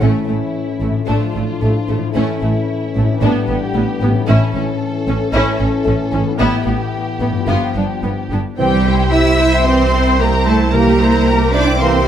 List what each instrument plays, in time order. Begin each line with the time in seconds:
Already playing: harp A2 C#4 E4 A4
0.00 double bass section A1, cello section A2, french horn section E3 C#4, viola section A3, violin section C#4 E4
0.27 double bass section A1, cello section A2, violin section A3, viola section A3
0.80 double bass section A1, cello section A2, violin section A3, viola section A3
0.90 harp A2
0.95 harp D4
0.99 harp F4
1.04 violin section D4, harp A4
1.08 double bass section A1, cello section A2, french horn section F3 D4, viola section A3, violin section F4
1.34 double bass section A1, cello section A2, violin section A3, viola section A3
1.62 double bass section A1, cello section A2, violin section A3, viola section A3
1.88 double bass section A1, cello section A2, violin section A3, viola section A3
1.98 harp A2
2.03 harp C#4
2.07 harp E4
2.12 double bass section A1, violin section C#4 E4, harp A4
2.16 cello section A2, french horn section E3 C#4, viola section A3
2.41 double bass section A1, cello section A2, violin section A3, viola section A3
2.96 double bass section A1, cello section A2, violin section A3, viola section A3
3.04 harp A2
3.09 harp D4
3.14 harp G4
3.18 violin section D4, harp B4
3.22 double bass section A1, cello section A2, french horn section G3 B3, viola section B3, violin section G4
3.48 double bass section A1, cello section A2, violin section B3, viola section B3
3.74 double bass section A1, cello section A2, violin section G3, viola section B3
4.01 double bass section A1, cello section A2, violin section B3, viola section B3
4.10 harp A2
4.15 harp C#4
4.19 harp E4
4.24 harp A4
4.28 double bass section A1, cello section A2, french horn section E3 C#4, viola section C#4, violin section E4 A4
4.54 double bass section A1, cello section A2, violin section C#4, viola section C#4
5.08 double bass section A1, cello section A2, violin section C#4, viola section C#4
5.33 double bass section A1, cello section A2, viola section C#4, violin section E4
5.60 double bass section A1, cello section A2, violin section C#4, viola section C#4
5.84 double bass section A1, cello section A2, violin section A3, viola section C#4
6.12 double bass section A1, cello section A2, violin section C#4, viola section C#4
6.22 harp A2
6.26 harp B3
6.31 harp E4
6.35 harp G4
6.39 double bass section A1, cello section A2, viola section B3, french horn section B3, violin section E4 G4
6.65 double bass section A1, cello section A2, violin section B3, viola section B3
7.20 double bass section A1, cello section A2, violin section B3, viola section B3
7.30 harp G2
7.34 harp B3
7.39 harp F4
7.44 harp G4
7.48 double bass section G1, cello section G2, french horn section F3, viola section B3, violin section F4
7.75 double bass section G1, cello section G2, viola section B3, violin section D4
8.03 double bass section G1, cello section G2, viola section B3, violin section B3
8.31 double bass section G1, cello section G2, viola section B3, violin section D4
8.58 double bass section C2, harp C3, trombone section E3 C4, cello section G3, viola section C4 G4, violin section G4 G5
8.73 harp G3
8.86 harp C4, viola section E4 C5
9.00 harp E4
9.12 viola section C4 G4, cello section E4, harp G4, violin section E5 E6
9.27 harp C5
9.40 viola section E4 C5, harp E5
9.54 harp G5
9.66 trombone section E3 C4, cello section C4, viola section C4 G4, violin section C5 C6, harp E5
9.80 harp G5
9.93 viola section E4 C5, harp E5
10.07 harp G5
10.20 cello section A#3, viola section C4 G4, violin section A#4 A#5, harp C5
10.34 harp G4
10.46 cello section A3, viola section E4 C5, harp E4, violin section A4 A5
10.60 harp C4
10.73 harp C3, trombone section E3 A#3, cello section A#3, viola section G4 A#4, violin section A#4 A#5
10.86 harp G3
11.00 harp A#3, viola section E4 C5
11.13 harp E4
11.27 harp G4, viola section G4 A#4
11.40 harp A#4
11.53 cello section D4, viola section E4 C5, violin section D5 D6, harp E5
11.67 harp G5
11.80 trombone section E3 A#3, cello section C4, viola section G4 A#4, violin section C5 C6, harp E5
11.93 harp G5